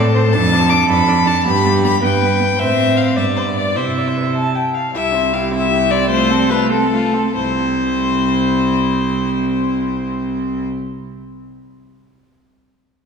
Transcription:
Already playing: cello A2, violin A4
0.14 viola C4, violin C5
0.33 cello F2, viola D4, violin A4 A5
0.53 viola D4
0.69 viola D4, violin D6
0.89 cello F2, viola D4, violin B5
1.08 viola D4
1.26 viola D4, violin A5
1.45 cello G2, viola B3, violin G4 B5
1.64 viola B3
1.83 viola B3, violin B5
2.02 cello G2, viola B3, violin B4 G5
2.21 viola B3
2.39 viola B3
2.58 cello A2, viola C4, violin C5 E5
2.97 violin F5
3.17 cello G2, viola B3, violin D5 E5
3.37 violin C5
3.55 violin D5
3.75 cello C3, viola E4, violin C5 E5
3.98 violin D5
4.07 violin C5
4.16 violin B4
4.25 violin C5
4.35 violin A5
4.55 violin G5
4.74 violin F5
4.94 cello C2, viola E4, violin G4 E5
5.14 viola C4, violin E4
5.33 viola E4, violin G4 F5
5.52 viola C4, violin E4 E5
5.70 viola E4, violin G4
5.90 viola C4, violin E4 D5
6.10 viola A3, violin F4 C5
6.30 viola C4, violin A4
6.49 viola A3, violin F4 B4
6.70 viola C4, violin A4
6.92 viola A3, violin F4
7.13 viola C4, violin A4
7.35 cello C2, viola C4, violin E4 C5

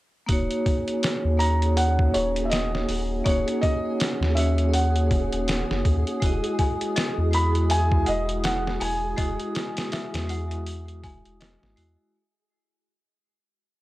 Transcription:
0.26 sub bass D#1, vibraphone A#3 D#4 F#4, ambient pad C#4 C#5 F#5, synth texture G#4, kick, open hi-hat
0.32 vibraphone C#5
0.51 closed hi-hat
0.66 kick, open hi-hat
0.88 closed hi-hat
1.03 snare, open hi-hat
1.25 sub bass D#2
1.37 vibraphone A#3 D#4, felt piano A#5, open hi-hat
1.41 vibraphone F#4 C#5
1.62 closed hi-hat
1.77 felt piano F#5, open hi-hat
1.99 kick
2.14 sub bass D#1, felt piano C#5, open hi-hat
2.36 closed hi-hat
2.45 felt piano E5
2.50 felt piano D#5, snare, open hi-hat
2.75 snare
2.89 sub bass D#1, open hi-hat
3.24 sub bass D#1, vibraphone A#3 D#4 F#4, felt piano C#5, ambient pad D#6, kick, open hi-hat
3.30 vibraphone C#5
3.48 closed hi-hat
3.61 felt piano D#5, kick, open hi-hat
4.00 snare, open hi-hat
4.21 sub bass D#2, snare
4.34 vibraphone A#3 C#4 F#4, felt piano E5, open hi-hat
4.40 vibraphone C#5
4.58 closed hi-hat
4.74 felt piano F#5, open hi-hat
4.96 closed hi-hat
5.11 sub bass D#1, kick, open hi-hat
5.33 sub bass D#1, closed hi-hat
5.48 snare, open hi-hat
5.71 sub bass F#1, snare
5.85 sub bass D#2, kick, open hi-hat
6.07 closed hi-hat
6.20 sub bass E1, vibraphone G#3 E4 F#4, ambient pad E4 G#4, kick, open hi-hat
6.26 vibraphone D#5
6.44 closed hi-hat
6.59 celesta G#5, kick, open hi-hat
6.81 closed hi-hat
6.96 celesta D#5, snare, open hi-hat
7.18 sub bass E2
7.31 vibraphone G#3 E4 F#4, felt piano B5, open hi-hat
7.36 vibraphone D#6
7.55 closed hi-hat
7.70 celesta E5, felt piano G#5, open hi-hat
7.92 kick
8.06 sub bass E1, felt piano D#5, celesta F#5, open hi-hat
8.29 closed hi-hat
8.44 felt piano F#5, snare, open hi-hat
8.67 snare
8.80 sub bass E1, celesta G#5, felt piano G#5, open hi-hat
9.17 sub bass E1, vibraphone G#3 E4 F#4, celesta D#5, kick, open hi-hat
9.22 vibraphone D#6
9.40 closed hi-hat
9.55 snare, open hi-hat
9.77 snare, open hi-hat
9.92 celesta E5, snare, open hi-hat
10.14 sub bass E2, snare, open hi-hat
10.27 vibraphone G#3 E4 F#4, celesta F#5, open hi-hat
10.33 vibraphone D#6
10.51 closed hi-hat
10.66 open hi-hat
10.88 closed hi-hat
11.03 sub bass E1, celesta G#5, kick, open hi-hat
11.25 sub bass E1, closed hi-hat
11.40 celesta D#5, snare, open hi-hat
11.63 sub bass G#1, snare
11.76 sub bass E2, vibraphone G#3 E4 F#4, open hi-hat

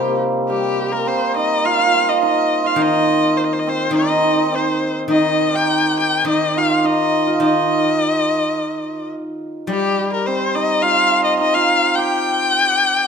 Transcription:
Already playing: guzheng C3, hammered dulcimer G3 C4 D#4 F4, erhu G4
0.08 hammered dulcimer A#3
0.49 hammered dulcimer G3, erhu G4
0.92 hammered dulcimer A#3, erhu A#4
1.06 hammered dulcimer C4, erhu C5
1.36 hammered dulcimer D#4, erhu D#5
1.65 hammered dulcimer F4, erhu F5
1.71 hammered dulcimer F4
1.79 hammered dulcimer F4
1.86 hammered dulcimer F4
1.94 hammered dulcimer F4
2.02 hammered dulcimer F4
2.09 hammered dulcimer F4, erhu D#5
2.23 hammered dulcimer D#4, erhu D#5
2.64 hammered dulcimer F4, erhu F5
2.76 guzheng D#3, hammered dulcimer D#4
2.82 erhu D#5
3.37 erhu C5
3.44 erhu D#5
3.53 erhu C5
3.60 erhu D#5
3.67 hammered dulcimer C4, erhu C5
3.91 guzheng D#3, hammered dulcimer D#4
3.95 erhu D#5
4.01 hammered dulcimer D#4
4.10 hammered dulcimer D#4
4.16 hammered dulcimer D#4
4.24 hammered dulcimer D#4
4.33 hammered dulcimer D#4
4.38 hammered dulcimer D#4
4.52 hammered dulcimer C4, erhu C5
5.08 guzheng D#3, hammered dulcimer D#4, erhu D#5
5.48 hammered dulcimer A#4
5.54 hammered dulcimer G4, erhu G5
5.98 hammered dulcimer G4, erhu G5
6.25 guzheng D#3, hammered dulcimer D#4, erhu D#5
6.57 hammered dulcimer F4, erhu F5
6.77 erhu F5
6.84 hammered dulcimer D#4, erhu D#5
7.27 hammered dulcimer F4
7.40 guzheng D#3, hammered dulcimer D#4, erhu D#5
9.67 guzheng G3, hammered dulcimer G3, erhu G4
10.13 erhu A#4
10.27 hammered dulcimer C4, erhu C5
10.55 hammered dulcimer D#4, erhu D#5
10.82 hammered dulcimer F4, erhu F5
11.24 erhu D#5
11.39 hammered dulcimer D#4, erhu D#5
11.55 hammered dulcimer F4, erhu F5
11.95 hammered dulcimer G4, erhu G5

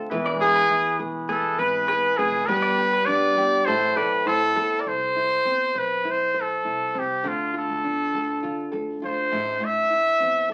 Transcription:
Already playing: nylon-string guitar D3 A3 C4 F4 A4
0.10 upright bass E1, tonewheel organ E3 E4 G#4 B4, nylon-string guitar E3 B4
0.26 clean electric guitar D5
0.41 nylon-string guitar G#4, trumpet G#4
0.56 clean electric guitar B4
0.70 upright bass E2, nylon-string guitar E4
0.99 upright bass E1, nylon-string guitar G#4
1.29 nylon-string guitar B3, clean electric guitar G#4, trumpet A4
1.58 upright bass G#1, nylon-string guitar B4, trumpet B4, clean electric guitar B4
1.88 nylon-string guitar G#4, clean electric guitar B4
2.17 upright bass F1, trumpet G#4, clean electric guitar G#4, nylon-string guitar B4
2.47 upright bass G1, nylon-string guitar G3 B4, tonewheel organ B3 D4 G4, trumpet B4
2.62 clean electric guitar D5
2.78 nylon-string guitar G4
2.93 clean electric guitar B4
3.06 upright bass G2, nylon-string guitar D4, trumpet D5
3.37 upright bass G1, nylon-string guitar G4
3.65 upright bass A1, nylon-string guitar A2, tonewheel organ A3 C4 E4, clean electric guitar A4, trumpet C5
3.96 upright bass B1, nylon-string guitar A4, trumpet B4, clean electric guitar D5
4.26 upright bass A1, nylon-string guitar E4, trumpet A4, clean electric guitar C5
4.56 upright bass G1, nylon-string guitar A4, clean electric guitar A4
4.80 trumpet D5
4.86 upright bass C2, trumpet C5
5.16 nylon-string guitar E4
5.45 upright bass G1, nylon-string guitar C4
5.75 upright bass B1, trumpet B4, nylon-string guitar C5
6.05 nylon-string guitar E4
6.11 trumpet C5
6.34 nylon-string guitar C5
6.41 trumpet A4
6.65 upright bass C2, nylon-string guitar E4
6.94 upright bass C2, nylon-string guitar C4
6.99 trumpet G4
7.24 upright bass D2, nylon-string guitar D3, trumpet F4
7.54 nylon-string guitar F4, trumpet A4
7.69 upright bass D2
7.84 upright bass E2, nylon-string guitar D4
8.14 upright bass D2, nylon-string guitar A4
8.43 upright bass D3, nylon-string guitar F4
8.72 upright bass D2, nylon-string guitar A4
9.02 upright bass D2, nylon-string guitar F4, trumpet C5
9.31 upright bass A1, nylon-string guitar A2
9.60 nylon-string guitar A2
9.65 trumpet E5
9.90 nylon-string guitar E4
10.20 upright bass E2, nylon-string guitar C4
10.50 nylon-string guitar A4

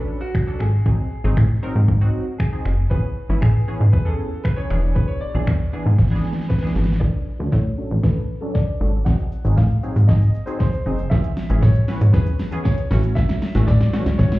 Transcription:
Already playing: analog polysynth F#3 C#4 D4 B4, grand piano A4
0.21 grand piano F#4
0.35 finger snap, kick
0.47 analog polysynth F#3 C#4 D4 A4
0.59 analog synth bass G#1, grand piano G#4, finger snap
0.86 analog synth bass A1, analog polysynth F#3 C4 D#4 G#4, kick
1.24 analog synth bass G#1, analog polysynth F#3 C4 D#4 G#4
1.37 analog synth bass A2, finger snap, kick
1.63 analog polysynth F#3 C4 D#4 A#4
1.75 analog synth bass G#2
1.88 analog synth bass G#2, kick
2.01 analog polysynth F#3 C4 D#4 F#4
2.38 grand piano G#4, finger snap, kick
2.52 analog polysynth F#3 C4 D#4 G#4
2.65 analog synth bass F#1, finger snap
2.90 analog synth bass A1, analog polysynth E3 B3 C#4 G#4, grand piano B4, kick
3.29 analog synth bass G#1, analog polysynth E3 B3 C#4 E4
3.41 analog synth bass A2, grand piano G#4, finger snap, kick
3.68 analog polysynth E3 B3 C#4 G#4
3.81 analog synth bass G#2
3.92 analog synth bass E2, grand piano B4, kick
4.05 analog polysynth E3 B3 C#4 G#4, grand piano A4
4.44 grand piano B4, finger snap, kick
4.56 analog polysynth E3 B3 C#4 G#4, grand piano C#5
4.70 analog synth bass E1, analog polysynth E3 B3 D4 G#4, finger snap
4.95 grand piano B4, kick
5.08 grand piano C#5
5.21 grand piano D5
5.34 analog synth bass B1, analog polysynth E3 B3 D4 G#4
5.47 analog synth bass E2, finger snap, kick
5.73 analog polysynth E3 B3 D4 G#4
5.86 analog synth bass G#2
5.98 analog synth bass G#1, kick, snare
6.07 analog polysynth E3, snare
6.11 analog polysynth B3 D4 G#4
6.16 snare
6.24 snare
6.33 snare
6.41 snare
6.49 grand piano B4, kick, snare
6.58 analog polysynth E3, snare
6.62 analog polysynth B3 D4 G#4
6.67 snare
6.75 analog synth bass G#1, snare
6.84 snare
6.92 snare
7.00 analog synth bass A1, analog polysynth F#3 C#4 D4 A4, grand piano D5, kick, snare
7.39 analog synth bass D2, analog polysynth F#3 C#4 D4 A4
7.51 analog synth bass A2, grand piano C#5, kick, snare
7.78 analog polysynth F#3 C#4 D4 A4
7.91 analog synth bass A1
8.02 analog synth bass A1, analog polysynth F#3 C#4 D4 A4, grand piano B4, kick, snare
8.41 analog polysynth F#3 C#4 D4 A4, grand piano A4
8.53 grand piano D5, kick, snare
8.80 analog synth bass G#1, analog polysynth F#3 C#4 D4 A4
9.05 analog synth bass A1, analog polysynth F#3 C4 D#4 G#4, grand piano F#5, kick, snare, shaker
9.19 shaker
9.32 shaker
9.44 analog synth bass G#1, analog polysynth F#3 C4 D#4 G#4, shaker
9.56 analog synth bass A2, grand piano F5, kick, snare, shaker
9.70 shaker
9.83 analog polysynth F#3 C4 D#4 G#4, shaker
9.96 analog synth bass G#2, shaker
10.07 analog synth bass G#2, analog polysynth F#3 C4 D#4 G#4, grand piano D#5, kick, snare, shaker
10.22 shaker
10.34 shaker
10.46 analog polysynth F#3 C4 D#4 G#4, grand piano C5, shaker
10.59 grand piano C5, kick, snare, shaker
10.73 shaker
10.86 analog synth bass F#1, analog polysynth F#3 C4 D#4 G#4, shaker
10.99 shaker
11.10 analog synth bass A1, analog polysynth E3 B3 C#4 G#4, grand piano E5, kick, snare, shaker
11.24 closed hi-hat, shaker
11.37 snare, open hi-hat, tambourine, shaker
11.50 analog synth bass G#1, analog polysynth E3 B3 C#4 G#4, closed hi-hat, shaker
11.61 analog synth bass A2, grand piano C#5, kick, snare, tambourine, shaker
11.75 closed hi-hat, shaker
11.88 analog polysynth E3 B3 C#4 B4, snare, open hi-hat, shaker
12.01 analog synth bass G#2, closed hi-hat, shaker
12.13 analog synth bass E2, analog polysynth E3 B3 C#4 G#4, grand piano B4, kick, snare, tambourine, shaker
12.27 closed hi-hat, shaker
12.39 snare, open hi-hat, tambourine, shaker
12.51 analog polysynth E3 B3 C#4 G#4, grand piano G#4, closed hi-hat, shaker
12.64 grand piano C#5, kick, snare, tambourine, shaker
12.78 closed hi-hat, shaker
12.91 analog synth bass A1, analog polysynth E3 A3 C#4 F#4, snare, open hi-hat, tambourine, shaker
13.04 closed hi-hat, shaker
13.15 grand piano E5, kick, snare, tambourine, shaker
13.29 snare, closed hi-hat, shaker
13.42 snare, open hi-hat, tambourine, shaker
13.55 analog synth bass A1, analog polysynth E3 A3 C#4 F#4, snare, closed hi-hat, shaker
13.67 analog synth bass A2, grand piano D5, kick, snare, tambourine, shaker
13.81 snare, closed hi-hat, shaker
13.93 analog polysynth E3 A3 C#4 F#4, snare, open hi-hat, tambourine, shaker
14.06 analog synth bass C#2, snare, closed hi-hat, shaker
14.18 analog synth bass A1, analog polysynth E3 A3 C#4 F#4, grand piano C#5, kick, snare, tambourine, shaker
14.32 snare, closed hi-hat, shaker

